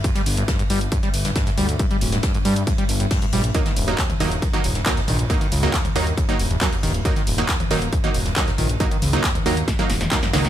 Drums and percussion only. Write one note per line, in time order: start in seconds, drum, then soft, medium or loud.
0.04 kick loud
0.04 closed hi-hat medium
0.04 ride loud
0.15 snare medium
0.15 closed hi-hat medium
0.26 open hi-hat loud
0.26 ride medium
0.37 closed hi-hat medium
0.48 kick loud
0.48 snare loud
0.48 closed hi-hat medium
0.48 ride medium
0.59 closed hi-hat medium
0.70 open hi-hat loud
0.70 ride medium
0.81 closed hi-hat medium
0.92 kick loud
0.92 closed hi-hat loud
0.92 ride medium
1.03 snare medium
1.03 closed hi-hat medium
1.13 open hi-hat loud
1.13 ride medium
1.25 snare medium
1.25 closed hi-hat medium
1.36 kick loud
1.36 snare loud
1.36 closed hi-hat loud
1.36 ride medium
1.47 snare soft
1.47 closed hi-hat medium
1.57 open hi-hat medium
1.57 ride medium
1.69 closed hi-hat medium
1.79 kick loud
1.79 closed hi-hat medium
1.79 ride medium
1.91 closed hi-hat medium
2.01 snare soft
2.01 open hi-hat loud
2.01 ride medium
2.12 snare medium
2.12 closed hi-hat medium
2.23 kick loud
2.23 snare loud
2.23 closed hi-hat medium
2.23 ride medium
2.34 closed hi-hat medium
2.45 open hi-hat medium
2.45 ride medium
2.56 closed hi-hat medium
2.67 kick loud
2.67 closed hi-hat medium
2.67 ride medium
2.78 closed hi-hat medium
2.89 open hi-hat loud
2.89 ride medium
3.00 closed hi-hat medium
3.10 kick loud
3.10 snare loud
3.10 closed hi-hat medium
3.10 open hi-hat medium
3.22 closed hi-hat medium
3.32 open hi-hat medium
3.32 ride medium
3.44 closed hi-hat medium
3.54 kick loud
3.54 closed hi-hat medium
3.54 ride medium
3.66 snare medium
3.66 closed hi-hat soft
3.76 open hi-hat loud
3.76 ride medium
3.88 closed hi-hat medium
3.98 kick loud
3.98 snare loud
3.98 clap loud
3.98 closed hi-hat medium
3.98 ride medium
4.10 closed hi-hat medium
4.10 mid tom loud
4.20 open hi-hat medium
4.20 ride medium
4.32 closed hi-hat medium
4.42 kick loud
4.42 closed hi-hat medium
4.42 ride medium
4.53 snare medium
4.53 closed hi-hat soft
4.64 open hi-hat loud
4.64 ride medium
4.75 snare medium
4.75 closed hi-hat soft
4.86 kick loud
4.86 snare loud
4.86 clap loud
4.86 closed hi-hat medium
4.86 ride loud
4.97 snare medium
4.97 closed hi-hat medium
5.07 open hi-hat medium
5.07 ride medium
5.19 closed hi-hat medium
5.30 kick loud
5.30 closed hi-hat medium
5.30 ride medium
5.41 closed hi-hat soft
5.52 snare soft
5.52 open hi-hat loud
5.52 ride medium
5.63 snare soft
5.63 closed hi-hat soft
5.73 kick loud
5.73 snare loud
5.73 clap loud
5.73 closed hi-hat medium
5.73 ride medium
5.85 closed hi-hat medium
5.85 mid tom medium
5.96 open hi-hat medium
5.96 ride medium
6.07 closed hi-hat soft
6.17 kick loud
6.17 closed hi-hat medium
6.17 ride medium
6.29 closed hi-hat soft
6.39 open hi-hat loud
6.39 ride medium
6.51 closed hi-hat medium
6.61 kick loud
6.61 snare loud
6.61 clap loud
6.61 closed hi-hat medium
6.61 open hi-hat medium
6.73 closed hi-hat medium
6.83 open hi-hat medium
6.83 ride medium
6.94 closed hi-hat medium
7.05 kick loud
7.05 closed hi-hat medium
7.05 ride medium
7.16 snare soft
7.16 closed hi-hat medium
7.27 open hi-hat loud
7.27 ride medium
7.38 closed hi-hat soft
7.49 kick loud
7.49 snare loud
7.49 clap loud
7.49 closed hi-hat medium
7.49 ride loud
7.60 closed hi-hat medium
7.60 mid tom loud
7.70 snare medium
7.70 open hi-hat medium
7.70 ride medium
7.82 closed hi-hat medium
7.93 kick loud
7.93 closed hi-hat medium
8.04 closed hi-hat medium
8.14 open hi-hat loud
8.14 ride medium
8.26 snare soft
8.26 closed hi-hat medium
8.36 kick loud
8.36 snare loud
8.36 clap loud
8.36 closed hi-hat medium
8.47 snare medium
8.47 closed hi-hat soft
8.58 open hi-hat medium
8.58 ride medium
8.69 closed hi-hat medium
8.80 kick loud
8.80 closed hi-hat loud
8.80 ride medium
8.91 closed hi-hat medium
9.02 snare soft
9.02 open hi-hat loud
9.02 mid tom medium
9.02 ride medium
9.13 snare soft
9.13 closed hi-hat medium
9.24 kick loud
9.24 snare loud
9.24 clap loud
9.24 closed hi-hat medium
9.24 ride medium
9.35 closed hi-hat medium
9.35 mid tom medium
9.46 open hi-hat medium
9.46 ride medium
9.57 closed hi-hat medium
9.68 kick loud
9.68 snare medium
9.68 closed hi-hat loud
9.68 ride medium
9.79 snare medium
9.79 closed hi-hat medium
9.90 snare medium
9.90 open hi-hat loud
9.90 ride medium
10.01 snare medium
10.01 closed hi-hat medium
10.01 mid tom medium
10.12 kick loud
10.12 snare medium
10.12 snare loud
10.12 clap loud
10.12 closed hi-hat medium
10.12 ride medium
10.22 snare loud
10.22 snare medium
10.22 closed hi-hat medium
10.22 mid tom medium
10.22 ride medium
10.33 snare loud
10.33 open hi-hat medium
10.33 ride medium
10.45 snare medium
10.45 closed hi-hat medium